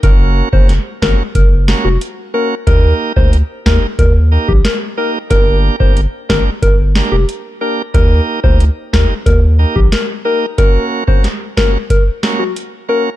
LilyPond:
<<
  \new Staff \with { instrumentName = "Soft synth lead" } { \time 4/4 \key ees \major \tempo 4 = 91 bes'8 r16 c''16 r8 bes'16 r16 bes'16 r8 ges'16 r8 bes'16 r16 | bes'8 r16 c''16 r8 bes'16 r16 bes'16 r8 g'16 bes'16 r16 bes'16 r16 | bes'8 r16 c''16 r8 bes'16 r16 bes'16 r8 g'16 r8 bes'16 r16 | bes'8 r16 c''16 r8 bes'16 r16 bes'16 r8 g'16 bes'16 r16 bes'16 r16 |
bes'8 r16 c''16 r8 bes'16 r16 bes'16 r8 ges'16 r8 bes'16 r16 | }
  \new Staff \with { instrumentName = "Tonewheel organ" } { \time 4/4 \key ees \major <bes des' ges' bes'>8. <bes des' ges' bes'>16 r8 <bes des' ges' bes'>16 r8. <bes des' ges' bes'>16 r8. <bes des' ges' bes'>16 r16 | <bes ees' g' bes'>8. <bes ees' g' bes'>16 r8 <bes ees' g' bes'>16 r8. <bes ees' g' bes'>16 r8. <bes ees' g' bes'>16 r16 | <bes d' g' bes'>8. <bes d' g' bes'>16 r8 <bes d' g' bes'>16 r8. <bes d' g' bes'>16 r8. <bes d' g' bes'>16 r16 | <bes ees' g' bes'>8. <bes ees' g' bes'>16 r8 <bes ees' g' bes'>16 r8. <bes ees' g' bes'>16 r8. <bes ees' g' bes'>16 r16 |
<bes des' ges' bes'>8. <bes des' ges' bes'>16 r8 <bes des' ges' bes'>16 r8. <bes des' ges' bes'>16 r8. <bes des' ges' bes'>16 r16 | }
  \new Staff \with { instrumentName = "Analog synth bass" } { \clef bass \time 4/4 \key ees \major ges,,8. ges,,8 r16 aes,,16 r16 ges,,8. f,,16 r4 | ees,8 r16 d,8 r16 ees,16 r16 ees,8. bes,,16 r4 | g,,8. g,,8 r16 aes,,16 r16 g,,8. f,,16 r4 | ees,8 r16 d,8 r16 ees,16 r16 ees,8. bes,,16 r4 |
r1 | }
  \new DrumStaff \with { instrumentName = "Drums" } \drummode { \time 4/4 <hh bd>8. bd16 <hh sn>8 <bd sn>8 <hh bd>8 sn8 hh4 | <hh bd>8. bd16 hh8 <bd sn>8 <hh bd>8. bd16 <hh sn>4 | <hh bd>8. bd16 hh8 <bd sn>8 <hh bd>8 sn8 hh4 | <hh bd>8. bd16 hh8 <bd sn>8 <hh bd>8. bd16 <hh sn>4 |
<hh bd>8. bd16 <hh sn>8 <bd sn>8 <hh bd>8 sn8 hh4 | }
>>